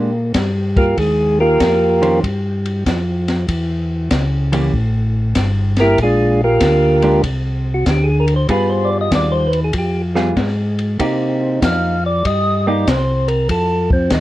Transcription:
Already playing: tonewheel organ A#2, hollow-body jazz guitar G4
0.34 tonewheel organ G2, kick, snare, hi-hat pedal, ride
0.76 tonewheel organ A#3 F4 G4 A#4, kick, ride
0.97 tonewheel organ D#2 G#3 G#4, kick, ride
1.40 tonewheel organ A#3 F4 G4 A#4
1.60 tonewheel organ F2, kick, snare, hi-hat pedal, ride
2.01 hollow-body jazz guitar D#3 C#4 G4 C5, ride
2.23 tonewheel organ G2, kick, ride
2.65 ride
2.86 tonewheel organ F2, kick, snare, hi-hat pedal, ride
3.28 snare, ride
3.48 tonewheel organ E2, kick, ride
4.11 tonewheel organ C#2, kick, snare, hi-hat pedal, ride
4.52 hollow-body jazz guitar E3 A#3 C#4 G4, ride
4.74 tonewheel organ A1, kick
5.35 tonewheel organ G1, kick, snare, hi-hat pedal, ride
5.77 tonewheel organ A#3 A#4, snare, ride
5.81 tonewheel organ E4 G4
5.98 tonewheel organ A#1, kick, ride
6.03 tonewheel organ G#3 D4 F4 G#4
6.44 tonewheel organ A#3 F4 G4 A#4
6.61 tonewheel organ D2, kick, snare, hi-hat pedal, ride
7.02 hollow-body jazz guitar G#3 D4 G4, ride
7.24 tonewheel organ C2, kick, ride
7.74 tonewheel organ F#4
7.86 tonewheel organ D2, kick, snare, hi-hat pedal, ride
7.91 tonewheel organ G4
8.04 tonewheel organ G#4
8.20 tonewheel organ A#4
8.28 ride
8.36 tonewheel organ C5
8.49 tonewheel organ G2 B4, hollow-body jazz guitar G3 B3 F4 G#4, kick, ride
8.70 tonewheel organ C5
8.85 tonewheel organ D5
9.01 tonewheel organ D#5
9.11 tonewheel organ D#2 D5, kick, snare, hi-hat pedal, ride
9.32 tonewheel organ C5
9.47 tonewheel organ B4
9.53 ride
9.64 tonewheel organ G#4
9.73 tonewheel organ F2, kick, ride
9.79 tonewheel organ G4
10.16 hollow-body jazz guitar G3 B3 F4 G#4, snare
10.37 tonewheel organ G#2, kick, snare, hi-hat pedal, ride
10.79 ride
10.99 tonewheel organ C3, hollow-body jazz guitar A#3 D#4 G4, kick, ride
11.62 tonewheel organ F2 F5, kick, snare, hi-hat pedal, ride
12.06 tonewheel organ D5
12.25 tonewheel organ G2 D#5, kick, ride
12.67 hollow-body jazz guitar A#3 D#4 G4, tonewheel organ D5
12.87 tonewheel organ C2 C5, kick, snare, hi-hat pedal, ride
13.28 tonewheel organ A#4, ride
13.49 tonewheel organ F2 A4, kick, ride
13.91 tonewheel organ C4, kick
14.11 tonewheel organ D#2 D#4, kick, snare, hi-hat pedal, ride

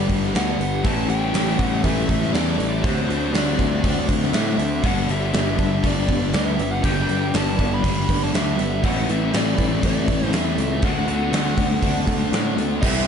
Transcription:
Already playing: overdriven electric guitar G2 D3 G3 B3 D4, distorted electric guitar G2 D3 G3, twelve-string acoustic guitar D4, ambient pad G4 D5 F#5 B5
0.09 picked electric bass G1, twelve-string acoustic guitar B3, kick, open hi-hat
0.23 snare
0.34 picked electric bass D2, twelve-string acoustic guitar D4, lead electric guitar F#5, snare, open hi-hat
0.59 picked electric bass G1, twelve-string acoustic guitar B3, open hi-hat
0.83 picked electric bass A1, overdriven electric guitar A2 E3 G3 C#4 E4, distorted electric guitar A2 E3 A3, clean electric guitar D3, twelve-string acoustic guitar E3, ambient pad E5 A5 D6, lead electric guitar A5, kick, open hi-hat
1.08 picked electric bass A1, lead electric guitar G5, open hi-hat
1.33 picked electric bass A1, twelve-string acoustic guitar E3, snare, open hi-hat
1.59 picked electric bass A1, lead electric guitar F#5, kick, open hi-hat
1.83 picked electric bass A1, distorted electric guitar A2 E3 A3, twelve-string acoustic guitar E3, lead electric guitar E5, kick, open hi-hat
2.08 picked electric bass A1, twelve-string acoustic guitar A3, kick, open hi-hat
2.23 snare
2.34 picked electric bass E2, lead electric guitar D5, snare, open hi-hat
2.58 picked electric bass A1, twelve-string acoustic guitar A3, open hi-hat
2.83 picked electric bass D2, overdriven electric guitar D3 A3 C4 F#4, distorted electric guitar D3 A3 D4, twelve-string acoustic guitar F#3, ambient pad C5 F#5 A5, lead electric guitar C5, kick, open hi-hat
3.08 picked electric bass D2, open hi-hat
3.33 picked electric bass D2, twelve-string acoustic guitar F#3, lead electric guitar D5, snare, open hi-hat
3.58 picked electric bass D2, twelve-string acoustic guitar C4, kick, open hi-hat
3.83 picked electric bass D2, distorted electric guitar D3 A3 D4, twelve-string acoustic guitar F#3, kick, open hi-hat
4.08 picked electric bass D2, twelve-string acoustic guitar A3, kick, open hi-hat
4.23 snare
4.33 picked electric bass A2, twelve-string acoustic guitar C4, lead electric guitar E5, snare, open hi-hat
4.58 picked electric bass D2, twelve-string acoustic guitar A3, open hi-hat
4.82 picked electric bass G1, overdriven electric guitar G2 D3 G3 B3 D4, distorted electric guitar G2 D3 G3, ambient pad B4 D5 G5, lead electric guitar F#5, kick, open hi-hat
5.09 picked electric bass G1, lead electric guitar E5, open hi-hat
5.34 picked electric bass G1, snare, open hi-hat
5.59 picked electric bass G1, twelve-string acoustic guitar D4, kick, open hi-hat
5.83 picked electric bass G1, distorted electric guitar G2 D3 G3, lead electric guitar D5, kick, open hi-hat
6.08 picked electric bass G1, twelve-string acoustic guitar B3, kick, open hi-hat
6.33 picked electric bass D2, twelve-string acoustic guitar D4, lead electric guitar E5, snare, open hi-hat
6.59 picked electric bass G1, twelve-string acoustic guitar B3, open hi-hat
6.71 lead electric guitar F#5
6.81 picked electric bass G1, overdriven electric guitar G2 D3 G3 B3 D4, distorted electric guitar G2 D3, lead electric guitar G5, kick, open hi-hat
6.86 distorted electric guitar G3
7.09 picked electric bass G1, open hi-hat
7.34 picked electric bass G1, lead electric guitar A5, snare, open hi-hat
7.59 picked electric bass G1, twelve-string acoustic guitar D4, kick, open hi-hat
7.74 lead electric guitar B5
7.83 picked electric bass G1, distorted electric guitar G2 D3 G3, kick, open hi-hat
8.09 picked electric bass G1, twelve-string acoustic guitar B3, kick, open hi-hat
8.23 lead electric guitar A5, snare
8.33 picked electric bass D2, twelve-string acoustic guitar D4, lead electric guitar E5, snare, open hi-hat
8.59 picked electric bass G1, twelve-string acoustic guitar B3, open hi-hat
8.83 picked electric bass A1, overdriven electric guitar A2 E3 G3 C#4 E4, distorted electric guitar A2 E3 A3, clean electric guitar D3, twelve-string acoustic guitar E3, ambient pad A4 E5, lead electric guitar F#5, kick, open hi-hat
9.09 picked electric bass A1, lead electric guitar E5, open hi-hat
9.33 picked electric bass A1, twelve-string acoustic guitar E3, lead electric guitar D5, snare, open hi-hat
9.58 picked electric bass A1, kick, open hi-hat
9.83 picked electric bass A1, distorted electric guitar A2 E3 A3, twelve-string acoustic guitar E3, lead electric guitar D5, kick, open hi-hat
10.08 picked electric bass A1, twelve-string acoustic guitar A3, kick, open hi-hat
10.22 snare
10.33 picked electric bass E2, lead electric guitar E5, snare, open hi-hat
10.58 picked electric bass C#2, twelve-string acoustic guitar A3, open hi-hat
10.82 picked electric bass D2, distorted electric guitar D3 A3 D4, overdriven electric guitar D3 A3 C4 F#4, twelve-string acoustic guitar A3, ambient pad D5 F#5 C6, lead electric guitar F#5, kick, open hi-hat
11.07 picked electric bass D2, open hi-hat
11.32 picked electric bass D2, twelve-string acoustic guitar A3, snare, open hi-hat
11.57 picked electric bass D2, twelve-string acoustic guitar C4, kick, open hi-hat
11.82 picked electric bass D2, distorted electric guitar D3 A3 D4, twelve-string acoustic guitar A3, kick, open hi-hat
12.07 picked electric bass D2, twelve-string acoustic guitar A3, kick, open hi-hat
12.32 picked electric bass A2, twelve-string acoustic guitar C4, snare, open hi-hat
12.57 picked electric bass D2, twelve-string acoustic guitar A3, open hi-hat
12.81 picked electric bass C2, distorted electric guitar C3 G3 C4, overdriven electric guitar C3 G3 C4 E4 G4, clean electric guitar E3 D4, twelve-string acoustic guitar E3, ambient pad G4 D5 E5 C6, lead electric guitar E5, kick, crash, tambourine

